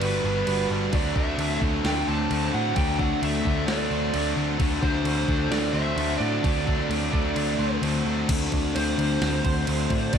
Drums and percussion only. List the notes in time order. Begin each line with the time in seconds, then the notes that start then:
0.01 crash
0.47 crash
0.93 kick, crash
1.16 kick
1.39 crash
1.62 kick
1.85 snare, crash
2.31 crash
2.76 kick, crash
2.99 kick
3.23 crash
3.45 kick
3.68 snare, crash
4.14 crash
4.60 kick, crash
4.83 kick
4.94 snare
5.05 crash
5.28 kick
5.52 snare, crash
5.98 crash
6.44 kick, crash
6.67 kick
6.79 snare
6.91 crash
7.13 kick
7.36 crash
7.83 crash
8.29 kick, crash
8.52 kick, crash
8.76 crash
8.99 crash
9.22 snare, crash
9.45 kick, crash
9.67 crash
9.90 kick, crash
10.13 kick, crash